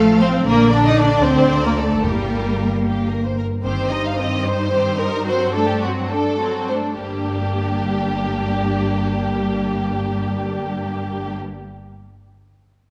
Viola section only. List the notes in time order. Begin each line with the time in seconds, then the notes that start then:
Already playing: A3
0.21 C4
0.47 A#3
0.73 D4
0.88 D#4
0.98 D4
1.24 C4
1.65 A#3
1.78 A3
2.05 G3
3.64 D#3 C4
3.91 G3 D#4
4.18 D#3 C4
4.45 G3 D#4
4.71 D#3 C4
4.98 G3 D#4
5.26 F#3 C4
5.53 A3 D4
5.82 F#3 C4
6.10 A3 D4
6.40 F#3 C4
6.71 A3 D4
7.02 G3 A#3